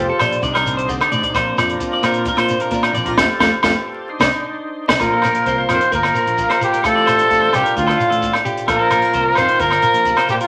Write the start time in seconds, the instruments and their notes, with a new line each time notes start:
Already playing: steel-string acoustic guitar F3 F4, tonewheel organ F4 G4 A4
0.00 steel-string acoustic guitar C5
0.09 clean electric guitar A4
0.19 fingered electric bass A#1, clean electric guitar C5, steel-string acoustic guitar D5, cross-stick, closed hi-hat, low agogo, shekere
0.32 closed hi-hat, shekere
0.42 fingered electric bass C2, steel-string acoustic guitar C3, tonewheel organ D4 D#4 C5, clean electric guitar D5, kick, closed hi-hat, shekere
0.54 fingered electric bass C2, clean electric guitar A#4, cross-stick, low agogo
0.66 steel-string acoustic guitar C4, closed hi-hat, shekere
0.77 clean electric guitar C5, closed hi-hat
0.88 steel-string acoustic guitar D3, muted clean electric guitar stroke, kick, closed hi-hat, shekere
1.01 cross-stick, low agogo
1.10 fingered electric bass A1, steel-string acoustic guitar C3, clean electric guitar D5, closed hi-hat, shekere
1.23 clean electric guitar D5, kick, closed hi-hat
1.34 fingered electric bass A#1, steel-string acoustic guitar A#2, tonewheel organ C4 D4 A#4, clean electric guitar C5, kick, cross-stick, closed hi-hat, low agogo, shekere
1.57 fingered electric bass F2, steel-string acoustic guitar F3, clean electric guitar D5, cross-stick, closed hi-hat, low agogo, shekere
1.69 closed hi-hat
1.80 steel-string acoustic guitar F4, kick, closed hi-hat, shekere
1.93 clean electric guitar D5
2.03 fingered electric bass A#2, clean electric guitar A#4, steel-string acoustic guitar C5, cross-stick, closed hi-hat, low agogo, shekere
2.14 closed hi-hat, shekere
2.25 steel-string acoustic guitar F4, clean electric guitar A#4, kick, closed hi-hat, shekere
2.37 fingered electric bass A#2, clean electric guitar C5, cross-stick, low agogo
2.48 steel-string acoustic guitar F3, closed hi-hat, shekere
2.60 clean electric guitar A#4, closed hi-hat
2.71 fingered electric bass A#2, steel-string acoustic guitar D4, clean electric guitar A#4, kick, closed hi-hat, shekere
2.83 cross-stick, low agogo
2.93 fingered electric bass A#1, steel-string acoustic guitar D4, clean electric guitar D5, closed hi-hat, shekere
3.06 steel-string acoustic guitar F4, clean electric guitar A#4, kick, closed hi-hat
3.17 fingered electric bass F2, steel-string acoustic guitar A3 C4 F4, tonewheel organ F4 G4 A4, clean electric guitar A4 C5 F5, kick, snare, low agogo, shekere
3.40 fingered electric bass F2, steel-string acoustic guitar A3 C4 F4, clean electric guitar A4 C5 F5, kick, snare, low agogo, shekere
3.63 fingered electric bass F2, steel-string acoustic guitar A3 C4 F4, clean electric guitar A4 C5 F5, kick, snare, low agogo, shekere
4.10 tonewheel organ D4 D#4 C5
4.20 fingered electric bass C2, steel-string acoustic guitar C4 D4 D#4, clean electric guitar C5 D5 D#5, kick, snare, low agogo, shekere
4.88 fingered electric bass C2, steel-string acoustic guitar C4 D4 D#4, clean electric guitar C5 D5 D#5, kick, snare, low agogo, shekere
5.00 fingered electric bass A#1, steel-string acoustic guitar A#2 F3 A#3 F4, tenor saxophone F3, clean electric guitar F4, trumpet A#4, kick, cross-stick, closed hi-hat, low agogo, shekere
5.13 clean electric guitar A4
5.22 steel-string acoustic guitar A#3, clean electric guitar A#4, cross-stick, closed hi-hat, low agogo, shekere
5.35 closed hi-hat
5.46 fingered electric bass C2, clean electric guitar C5, kick, closed hi-hat, shekere
5.58 clean electric guitar C5
5.69 fingered electric bass F2, tenor saxophone D#3, steel-string acoustic guitar F3, clean electric guitar A#4, trumpet C5, cross-stick, closed hi-hat, low agogo, shekere
5.81 clean electric guitar C5, closed hi-hat
5.92 fingered electric bass G1, tenor saxophone F3, steel-string acoustic guitar A#3, clean electric guitar A#4, trumpet A#4, kick, closed hi-hat, shekere
6.03 cross-stick, low agogo
6.15 clean electric guitar A#4, closed hi-hat, shekere
6.26 fingered electric bass A#1, closed hi-hat, shekere
6.37 steel-string acoustic guitar F3, kick, closed hi-hat, shekere
6.49 clean electric guitar C5, cross-stick, low agogo
6.61 tenor saxophone A#2, steel-string acoustic guitar F4, trumpet G4, closed hi-hat, shekere
6.73 clean electric guitar A#4, closed hi-hat, shekere
6.83 fingered electric bass A1, steel-string acoustic guitar A2 F4, tenor saxophone C3, clean electric guitar A4, trumpet A4, kick, cross-stick, closed hi-hat, low agogo, shekere
6.95 clean electric guitar D5
7.06 steel-string acoustic guitar D4, clean electric guitar C5, cross-stick, closed hi-hat, low agogo, shekere
7.17 clean electric guitar C5, closed hi-hat, shekere
7.29 fingered electric bass A1, steel-string acoustic guitar F4, clean electric guitar A4, kick, closed hi-hat, shekere
7.40 clean electric guitar C5
7.53 fingered electric bass C2, trumpet G4, cross-stick, closed hi-hat, low agogo, shekere
7.57 tenor saxophone A#2
7.64 clean electric guitar A#4, closed hi-hat
7.76 fingered electric bass D2, tenor saxophone A2, steel-string acoustic guitar D4, trumpet F4, kick, closed hi-hat, shekere
7.87 clean electric guitar A4, cross-stick, low agogo
7.97 clean electric guitar F4, closed hi-hat, shekere
8.10 fingered electric bass A1, clean electric guitar A4, closed hi-hat, shekere
8.22 steel-string acoustic guitar A2, kick, closed hi-hat, shekere
8.33 cross-stick, low agogo
8.45 steel-string acoustic guitar F4, clean electric guitar G4, closed hi-hat, shekere
8.57 closed hi-hat, shekere
8.68 fingered electric bass A#1, steel-string acoustic guitar A#2 F4, tenor saxophone F3, trumpet A#4, clean electric guitar A#4, kick, cross-stick, closed hi-hat, low agogo, shekere
8.79 clean electric guitar A4
8.90 steel-string acoustic guitar A#3, clean electric guitar A#4, cross-stick, closed hi-hat, low agogo, shekere
9.02 steel-string acoustic guitar C4, closed hi-hat, shekere
9.13 fingered electric bass C2, clean electric guitar C5, kick, closed hi-hat, shekere
9.26 muted clean electric guitar stroke
9.35 fingered electric bass F2, steel-string acoustic guitar F3, clean electric guitar F4, trumpet C5, cross-stick, closed hi-hat, low agogo, shekere
9.40 tenor saxophone D#3
9.48 clean electric guitar C5, closed hi-hat
9.60 fingered electric bass G1, tenor saxophone F3, steel-string acoustic guitar C4, trumpet A#4, clean electric guitar A#4, kick, closed hi-hat, shekere
9.71 cross-stick, low agogo
9.82 clean electric guitar A#4, closed hi-hat, shekere
9.94 fingered electric bass A#1, closed hi-hat, shekere
10.05 steel-string acoustic guitar C3, kick, closed hi-hat, shekere
10.17 clean electric guitar C5, cross-stick, low agogo
10.29 steel-string acoustic guitar A#2, tenor saxophone A#2, trumpet G4, closed hi-hat, shekere
10.40 trumpet F4, clean electric guitar A#4, closed hi-hat, shekere